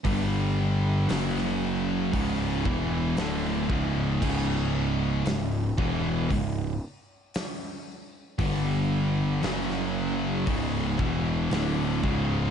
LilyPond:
<<
  \new Staff \with { instrumentName = "Distorted electric guitar" } { \clef bass \time 4/4 \key fis \mixolydian \tempo 4 = 58 <g, d g>4 <fis, cis fis>4 <cis, gis, cis>8 <e, b, e>8 <d, a, d>8 <cis, gis, cis>8 | <cis, gis, cis>4 <cis, gis,>8 <e, b, e>8 <cis, gis,>8 r4. | <g, d g>4 <fis, cis fis>4 <cis, gis, cis>8 <e, b, e>8 <d, a, d>8 <cis, gis, cis>8 | }
  \new Staff \with { instrumentName = "Distorted electric guitar" } { \clef bass \time 4/4 \key fis \mixolydian <g, d g>4 <fis, cis fis>4 <cis, gis, cis>8 <e, b, e>8 <d, a, d>8 <cis, gis, cis>8 | <cis, gis, cis>4 <cis, gis,>8 <e, b, e>8 <cis, gis,>8 r4. | <g, d g>4 <fis, cis fis>4 <cis, gis, cis>8 <e, b, e>8 <d, a, d>8 <cis, gis, cis>8 | }
  \new Staff \with { instrumentName = "Distorted electric guitar" } { \clef bass \time 4/4 \key fis \mixolydian <g, d g>4 <fis, cis fis>4 <cis, gis, cis>8 <e, b, e>8 <d, a, d>8 <cis, gis, cis>8 | <cis, gis, cis>4 <cis, gis,>8 <e, b, e>8 <cis, gis,>8 r4. | <g, d g>4 <fis, cis fis>4 <cis, gis, cis>8 <e, b, e>8 <d, a, d>8 <cis, gis, cis>8 | }
  \new Staff \with { instrumentName = "Picked electric bass" } { \clef bass \time 4/4 \key fis \mixolydian g,,4 fis,,4 cis,,8 e,,8 d,,8 cis,,8 | cis,,4 cis,,8 e,,8 cis,,8 r4. | g,,4 fis,,4 cis,,8 e,,8 d,,8 cis,,8 | }
  \new DrumStaff \with { instrumentName = "Drums" } \drummode { \time 4/4 <hho bd>4 <hho sn>16 sn8. <hho bd>8 bd8 <hho sn>8 bd8 | <cymc bd>4 <hho sn>8 bd8 <hho bd>4 <hho sn>4 | <hho bd>4 <hho sn>16 sn8. <hho bd>8 bd8 <hho sn>8 bd8 | }
>>